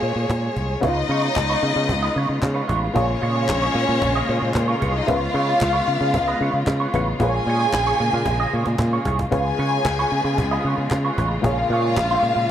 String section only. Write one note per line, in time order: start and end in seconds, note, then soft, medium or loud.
0.00 0.79 C#3 medium
0.00 0.80 G#3 medium
0.00 0.80 A#3 medium
0.00 0.79 F4 medium
0.81 7.15 C#3 medium
0.81 9.28 G#3 medium
0.81 2.92 B3 medium
0.81 9.27 F4 medium
2.96 5.06 A#3 medium
5.09 7.18 B3 medium
7.20 9.30 C#3 medium
7.20 9.30 A#3 medium
9.32 12.51 C#3 medium
9.32 12.51 G#3 medium
9.32 11.42 B3 medium
9.32 12.51 F4 medium
11.43 12.51 A#3 medium